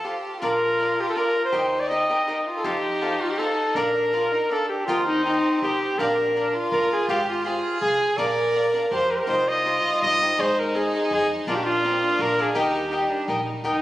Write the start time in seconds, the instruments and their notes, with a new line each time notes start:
0.04 cavaquinho F4 A4 C5 F5, violin G4
0.41 upright bass A#1, cavaquinho D4 A#4 D5 F5, violin F4, trumpet A#4
0.79 cavaquinho D4 A#4 D5 F5
1.00 trumpet G4
1.09 trumpet A4
1.16 cavaquinho D4 A#4 D5 F5, trumpet A#4
1.45 trumpet C5
1.52 upright bass D#2, violin D#4, cavaquinho G4 A#4 D#5 G5
1.80 trumpet D5
1.89 cavaquinho G4 A#4 D#5 G5, trumpet D#5
2.09 cavaquinho G4 A#4 D#5 G5
2.27 violin D#4, cavaquinho G4 A#4 D#5 G5
2.47 violin F4
2.57 trumpet A4
2.64 upright bass F2, violin D#4, cavaquinho F4 A4 C5 F5, trumpet G4
3.01 cavaquinho F4 A4 C5 F5
3.21 trumpet F4
3.30 trumpet G4
3.38 cavaquinho F4 A4 C5 F5, trumpet A4
3.74 upright bass A#1, violin D4, cavaquinho D4 A#4 D5 F5, trumpet A#4
4.13 cavaquinho D4 A#4 D5 F5, violin F4
4.32 violin D#4
4.50 violin D4, cavaquinho D4 A#4 D5 F5, trumpet A4
4.69 trumpet G4
4.87 upright bass D#2, violin C4, trumpet F4, cavaquinho G4 A#4 D#5 G5
5.07 trumpet D#4
5.25 trumpet D#4, cavaquinho G4 A#4 D#5 G5
5.62 upright bass C2, trumpet G4, cavaquinho G4 A#4 D#5 G5
5.99 upright bass A#1, cavaquinho D4 A#4 D5 F5, violin D4, trumpet A#4
6.35 cavaquinho D4 A#4 D5 F5, violin D4
6.54 violin F4
6.71 upright bass G1, cavaquinho D4 A#4 D5 F5, trumpet A#4
6.92 trumpet G#4
7.08 upright bass G#1, cavaquinho F4 G#4 C5 F5, trumpet G4, violin G4
7.29 trumpet F4
7.45 cavaquinho F4 G#4 C5 F5, trumpet F4, violin G#4
7.81 upright bass C2, cavaquinho F4 G#4 C5 F5, trumpet G#4
8.18 upright bass A#1, cavaquinho D4 A#4 D5 F5, violin A#4, trumpet D5
8.54 cavaquinho D4 A#4 D5 F5
8.74 cavaquinho D4 A#4 D5 F5
8.91 upright bass F2, cavaquinho D4 A#4 D5 F5, violin G4, trumpet C5
9.11 trumpet A#4
9.16 trumpet C5
9.20 trumpet A#4
9.27 upright bass C2, violin section G3 D#4 C5, cavaquinho D#4 G4 C5 D#5, violin F4, trumpet C5
9.48 trumpet D#5
9.65 cavaquinho D#4 G4 C5 D#5
10.02 upright bass G2, cavaquinho D#4 G4 C5 D#5, trumpet D#5
10.22 cavaquinho D#4 G4 C5 D#5
10.38 upright bass G#1, violin section G#3 C5, cavaquinho D#4 G#4 C5 D#5, violin D#4, trumpet C5
10.59 trumpet A#4
10.75 cavaquinho D#4 G#4 C5 D#5, trumpet G#4
10.94 cavaquinho D#4 G#4 C5 D#5
11.11 upright bass F2, cavaquinho D#4 G#4 C5 D#5, trumpet G#4
11.47 upright bass A#1, cavaquinho D4 A#4 D5 F5, violin D4, trumpet F4, violin section F4 D5
11.51 violin section A#3
11.55 trumpet G4
11.64 trumpet F4
11.83 violin C4, cavaquinho D4 A#4 D5 F5
12.03 violin D4
12.19 upright bass A#1, cavaquinho D4 A#4 D5 F5, trumpet A#4
12.38 cavaquinho D4 A#4 D5 F5, trumpet G#4
12.55 upright bass D#2, violin section G3 D#4 A#4, violin D#4, cavaquinho G4 A#4 D#5 G5, trumpet G4
12.90 violin D#4, cavaquinho G4 A#4 D#5 G5
13.09 violin D4
13.28 upright bass A#1, violin D#4, cavaquinho G4 A#4 D#5 G5
13.63 upright bass D#2, trumpet D#4, violin D#4, cavaquinho G4 A#4 D#5 G5